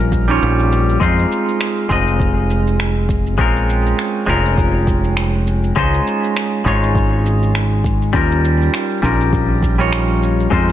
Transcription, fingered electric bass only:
Already playing: A#1
0.42 A#1
1.01 F2
1.90 F1
3.39 A#1
4.28 F1
5.77 C#2
6.65 G#1
8.14 D#2
9.03 A#1
10.52 F2

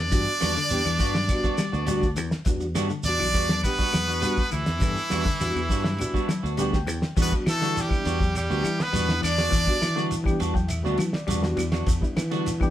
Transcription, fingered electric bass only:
0.00 E2
0.12 G2
0.42 E2
0.71 E2
0.86 E2
1.00 G2
1.73 D2
2.17 E2
2.46 E2
2.75 G2
3.05 E2
3.21 B1
3.35 E2
3.94 E2
4.53 D2
4.68 E2
4.81 G2
5.12 E2
5.41 E2
5.56 E2
5.69 G2
6.43 D2
6.88 E2
7.17 E2
7.47 E3
8.06 E2
8.50 D2
8.64 E3
8.93 E2
9.24 E2
9.52 E2
9.82 E3
10.41 E2
10.84 D2
10.99 E3
11.28 E2
11.57 E2
11.87 E2
12.17 E3

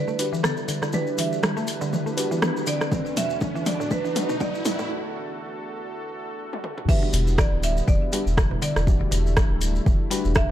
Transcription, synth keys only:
Already playing: D4 F#4 G4 B4
0.19 D4 F#4 G4 B4
0.93 D4 F#4 G4 D5
2.17 D4 F#4 G4 B4
2.92 D4 F#4 A4 B4
4.16 D4 F#4 A4 B4
6.88 D4 F#4 G4 B4
8.13 D4 F#4 G4 B4
8.87 D4 F#4 G4 D5
10.11 D4 F#4 G4 B4

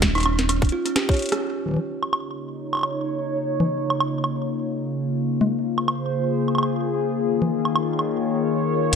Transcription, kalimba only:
0.15 D#4
0.25 C#4
0.49 C#4
0.72 F4
0.85 C#4
0.96 G4
1.09 C#5
1.32 C#4

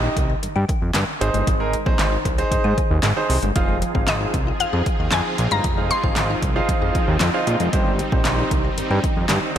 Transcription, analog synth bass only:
0.17 C2
0.43 G2
0.56 G2
0.82 F2
0.95 G2
1.21 G#1
1.34 G1
1.47 G#1
1.86 A#1
1.99 G#1
2.25 C2
2.52 G#2
2.65 G#2
2.91 D#2
3.04 G#2
3.30 C2
3.43 G1
3.56 F1
3.95 G#1
4.08 G#1
4.34 C2
4.60 F2
4.73 F2
4.99 D#2
5.12 F2
5.38 A#1
5.52 G1
5.64 F1
6.04 G#1
6.17 G#1
6.42 C2
6.69 F2
6.82 F2
7.08 D#2
7.21 F2
7.47 A#1
7.60 F1
7.73 G1
8.12 A#1
8.25 A#1
8.51 C2
8.78 G2
8.91 G2
9.17 F2
9.30 G2

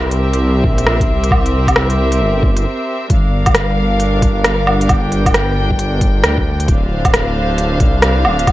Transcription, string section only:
Already playing: C4 G4 A#4 E5
3.10 G3 D4 A#4 F5
4.90 G5
6.68 D3 D4 C5 F5
8.49 D5

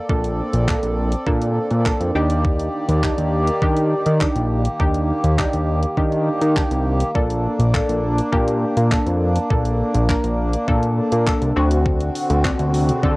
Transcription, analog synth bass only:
0.09 A#1
0.53 A#1
0.83 A#1
1.27 A#2
1.71 A#2
2.00 F2
2.15 D#2
2.89 D#2
3.18 D#2
3.62 D#3
4.06 D#3
4.36 A#1
4.80 D#2
5.24 D#2
5.54 D#2
5.97 D#3
6.42 D#3
6.71 C2
7.15 A#1
7.59 A#1
7.89 A#1
8.33 A#2
8.77 A#2
9.07 F2
9.51 A#1
9.95 A#1
10.24 A#1
10.68 A#2
11.12 A#2
11.42 C2
11.56 D2
12.30 D2
12.59 D2
13.03 D3

